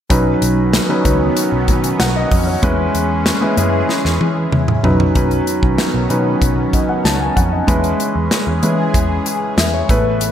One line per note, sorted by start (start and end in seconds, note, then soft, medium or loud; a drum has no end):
0.10 0.34 B1 medium
0.10 2.60 D#3 medium
0.10 0.84 F#3 medium
0.10 2.60 B3 medium
0.10 0.84 C#4 medium
0.10 5.12 C#4 medium
0.10 0.85 D#4 medium
0.10 0.85 B4 medium
0.10 kick loud
0.10 closed hi-hat medium
0.42 0.77 B1 medium
0.42 closed hi-hat medium
0.73 snare loud
0.73 closed hi-hat medium
0.89 1.03 F#3 medium
0.89 1.03 C#4 medium
0.89 1.04 D#4 medium
0.89 1.04 B4 medium
1.04 1.29 C#2 medium
1.04 2.23 F#3 medium
1.04 2.23 C#4 medium
1.04 2.24 D#4 medium
1.04 2.24 B4 medium
1.04 kick medium
1.04 closed hi-hat medium
1.37 closed hi-hat medium
1.52 1.69 B1 medium
1.68 1.92 B2 loud
1.68 kick medium
1.68 closed hi-hat medium
1.84 closed hi-hat medium
2.00 2.24 B1 medium
2.00 2.15 F#5 medium
2.00 snare loud
2.00 closed hi-hat medium
2.16 2.46 D#5 medium
2.31 2.55 F2 medium
2.31 kick medium
2.31 open hi-hat medium
2.47 2.77 C#5 medium
2.62 2.87 E2 loud
2.62 4.82 E3 medium
2.62 3.37 G#3 medium
2.62 3.37 C#4 medium
2.62 3.37 E4 medium
2.62 4.82 G#4 medium
2.62 3.37 B4 medium
2.62 kick loud
2.62 closed hi-hat medium
2.94 3.30 E2 medium
2.94 closed hi-hat medium
3.26 snare loud
3.26 closed hi-hat medium
3.41 3.55 G#3 medium
3.41 3.56 C#4 medium
3.41 3.56 E4 medium
3.41 3.56 B4 medium
3.57 3.81 F#2 medium
3.57 4.76 G#3 medium
3.57 4.76 C#4 medium
3.57 4.76 E4 medium
3.57 4.76 B4 medium
3.57 closed hi-hat medium
3.89 snare medium
4.05 4.17 E2 medium
4.05 snare soft
4.21 4.44 E3 loud
4.21 high tom medium
4.52 4.76 E2 medium
4.52 mid tom medium
4.68 mid tom medium
4.83 5.08 B1 medium
4.83 5.13 F#3 medium
4.83 5.13 C#4 medium
4.83 5.14 D#4 medium
4.83 5.14 B4 medium
4.83 floor tom medium
5.00 floor tom medium
5.15 5.39 B1 medium
5.15 7.66 D#3 medium
5.15 6.04 F#3 medium
5.15 7.66 B3 medium
5.15 6.04 C#4 medium
5.15 9.85 C#4 medium
5.15 6.04 D#4 medium
5.15 6.05 B4 medium
5.15 kick loud
5.15 closed hi-hat medium
5.31 closed hi-hat soft
5.47 closed hi-hat medium
5.63 5.75 B1 medium
5.63 kick medium
5.78 snare loud
5.78 closed hi-hat medium
5.94 6.06 B1 medium
6.10 6.34 B2 medium
6.10 6.84 F#3 medium
6.10 6.84 C#4 medium
6.10 6.84 D#4 medium
6.10 6.85 B4 medium
6.10 closed hi-hat medium
6.41 6.65 B1 medium
6.41 kick medium
6.41 closed hi-hat medium
6.73 6.88 D#5 medium
6.73 kick medium
6.73 closed hi-hat medium
6.89 7.04 F#5 medium
7.05 7.29 C#2 medium
7.05 7.20 A5 medium
7.05 snare medium
7.05 closed hi-hat medium
7.21 7.36 G#5 medium
7.36 7.60 F2 medium
7.36 7.51 F#5 medium
7.36 kick medium
7.36 closed hi-hat medium
7.52 7.82 D#5 medium
7.67 7.92 E2 medium
7.67 9.87 E3 medium
7.67 8.57 G#3 medium
7.67 8.57 C#4 medium
7.67 8.57 E4 medium
7.67 9.87 G#4 medium
7.67 8.57 B4 medium
7.67 kick loud
7.67 closed hi-hat medium
7.84 closed hi-hat soft
8.00 closed hi-hat medium
8.16 8.27 E2 medium
8.31 snare loud
8.31 closed hi-hat medium
8.47 8.59 E2 medium
8.62 8.87 E3 medium
8.62 9.37 G#3 medium
8.62 9.37 C#4 medium
8.62 9.37 E4 medium
8.62 9.37 B4 medium
8.62 closed hi-hat medium
8.94 9.18 E2 medium
8.94 kick medium
8.94 closed hi-hat medium
9.26 9.56 G#5 medium
9.26 closed hi-hat medium
9.58 9.81 E2 medium
9.58 9.73 E5 medium
9.58 snare loud
9.58 closed hi-hat medium
9.74 10.04 C#5 medium
9.89 10.32 A1 medium
9.89 10.32 A3 medium
9.89 10.32 B3 medium
9.89 10.32 E4 medium
9.89 10.32 B4 medium
9.89 kick loud
9.89 closed hi-hat medium
10.21 closed hi-hat medium